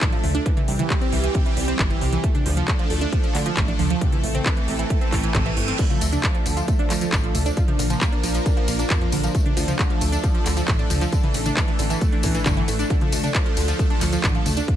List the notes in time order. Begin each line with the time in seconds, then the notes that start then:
Already playing: F3 A3 D4 A4
0.01 A1 D3, kick, clap, closed hi-hat
0.12 F3, closed hi-hat
0.23 D2 A3, open hi-hat, mid tom
0.35 D4, closed hi-hat
0.46 E3 G3 C4 G4, kick, closed hi-hat
0.57 E3, closed hi-hat, mid tom
0.68 C2 C3, open hi-hat
0.79 E3, closed hi-hat, mid tom
0.90 kick, clap, closed hi-hat
1.01 C4, closed hi-hat
1.12 C2 E3, open hi-hat
1.24 E3, closed hi-hat
1.35 C3, kick, closed hi-hat
1.46 E3, closed hi-hat
1.57 C2 G3, open hi-hat
1.68 C4, closed hi-hat
1.79 G1 E3, kick, clap, closed hi-hat
1.90 E3, closed hi-hat
2.01 C2 C3, open hi-hat
2.13 E3, closed hi-hat
2.24 F3 A3 D4 A4, kick, closed hi-hat
2.35 D4, closed hi-hat, mid tom
2.46 D2 F3, open hi-hat
2.57 F3, closed hi-hat, mid tom
2.68 D3, kick, clap, closed hi-hat
2.79 F3, closed hi-hat
2.90 D2 A3, open hi-hat
3.01 D4, closed hi-hat
3.12 F3, kick, closed hi-hat
3.24 F3, closed hi-hat
3.35 D2 D3, clap, open hi-hat
3.46 F3, closed hi-hat
3.57 A1 A3, kick, clap, closed hi-hat
3.68 D4, closed hi-hat
3.79 D2 F3, open hi-hat, mid tom
3.90 F3, closed hi-hat
4.01 C3 E3 C4, kick, closed hi-hat
4.12 E3, closed hi-hat, mid tom
4.24 A1 A3, open hi-hat
4.35 C4, closed hi-hat, mid tom
4.46 E3, kick, clap, closed hi-hat
4.57 E3, closed hi-hat
4.68 A1 C3, open hi-hat
4.79 E3, closed hi-hat
4.90 A3, kick, closed hi-hat, reverse cymbal
5.01 C4, closed hi-hat
5.12 A1 E3, kick, clap, open hi-hat
5.24 E3, closed hi-hat
5.35 A1 C3, kick, clap, closed hi-hat
5.46 E3, closed hi-hat
5.57 G1 A3, open hi-hat
5.68 C4, closed hi-hat
5.79 D3 F3 D4, kick, closed hi-hat, tambourine, crash
5.90 F3, closed hi-hat, mid tom
6.01 D2 A3, open hi-hat, ride, tambourine
6.12 D4, closed hi-hat, mid tom, tambourine
6.23 F3, kick, clap, closed hi-hat, tambourine
6.35 F3, closed hi-hat
6.46 D2 D3, open hi-hat, ride, tambourine
6.57 F3, closed hi-hat, tambourine
6.68 A3, kick, closed hi-hat, tambourine
6.79 D4, closed hi-hat
6.90 D2 F3, clap, open hi-hat, ride, tambourine
7.01 F3, closed hi-hat, tambourine
7.12 A1 D3, kick, clap, closed hi-hat, tambourine
7.24 F3, closed hi-hat
7.35 D2 A3, open hi-hat, mid tom, ride, tambourine
7.46 D4, closed hi-hat, tambourine
7.57 F3 A#3 A#4, kick, closed hi-hat, tambourine
7.68 F3, closed hi-hat, mid tom
7.79 A#1 D3, open hi-hat, ride, tambourine
7.90 F3, closed hi-hat, mid tom, tambourine
8.01 A#3, kick, clap, closed hi-hat, tambourine
8.12 D4, closed hi-hat
8.23 A#1 F3, open hi-hat, ride, tambourine
8.34 F3, closed hi-hat, tambourine
8.46 D3, kick, closed hi-hat, tambourine
8.57 F3, closed hi-hat
8.68 A#1 A#3, open hi-hat, ride, tambourine
8.79 D4, closed hi-hat, tambourine
8.90 F2 F3, kick, clap, closed hi-hat, tambourine
9.01 F3, closed hi-hat
9.12 A#1 D3, open hi-hat, ride, tambourine
9.23 F3, closed hi-hat, tambourine
9.35 A3 A4, kick, closed hi-hat, tambourine
9.46 D4, closed hi-hat, mid tom
9.57 D2 F3, open hi-hat, ride, tambourine
9.68 F3, closed hi-hat, mid tom, tambourine
9.79 D3, kick, clap, closed hi-hat, tambourine
9.90 F3, closed hi-hat
10.01 D2 A3, open hi-hat, ride, tambourine
10.12 D4, closed hi-hat, tambourine
10.24 F3, kick, closed hi-hat, tambourine
10.35 F3, closed hi-hat
10.46 D2 D3, clap, open hi-hat, ride, tambourine
10.57 F3, closed hi-hat, tambourine
10.68 A1 A3, kick, clap, closed hi-hat, tambourine
10.79 D4, closed hi-hat
10.90 D2 F3, open hi-hat, mid tom, ride, tambourine
11.01 F3, closed hi-hat, tambourine
11.12 D3 E3, kick, closed hi-hat, tambourine
11.24 E3, closed hi-hat, mid tom
11.34 A1 A3, open hi-hat, ride, tambourine
11.46 D4, closed hi-hat, mid tom, tambourine
11.57 E3, kick, clap, closed hi-hat, tambourine
11.68 E3, closed hi-hat
11.79 A1 D3, open hi-hat, ride, tambourine
11.90 E3, closed hi-hat, tambourine
12.01 A3, kick, closed hi-hat, tambourine
12.12 D4, closed hi-hat
12.23 A1 E3, kick, open hi-hat, ride, tambourine
12.35 E3, closed hi-hat, tambourine
12.46 G1 D3, kick, clap, closed hi-hat, tambourine
12.57 E3, closed hi-hat
12.68 A1 A3, open hi-hat, ride, tambourine
12.79 D4, closed hi-hat, tambourine
12.90 D3 F3 A4, kick, closed hi-hat, tambourine
13.01 F3, closed hi-hat, mid tom
13.12 D2 A3, open hi-hat, ride, tambourine
13.23 D4, closed hi-hat, mid tom, tambourine
13.34 F3, kick, clap, closed hi-hat, tambourine
13.46 F3, closed hi-hat
13.57 D2 D3, open hi-hat, ride, tambourine
13.68 F3, closed hi-hat, tambourine
13.79 A3, kick, closed hi-hat, tambourine
13.90 D4, closed hi-hat
14.01 D2 F3, clap, open hi-hat, ride, tambourine
14.12 F3, closed hi-hat, tambourine
14.24 A1 D3, kick, clap, closed hi-hat, tambourine
14.35 F3, closed hi-hat
14.46 D2 A3, open hi-hat, mid tom, ride, tambourine
14.57 D4, closed hi-hat, tambourine
14.68 E3 G3 C4 G4, kick, closed hi-hat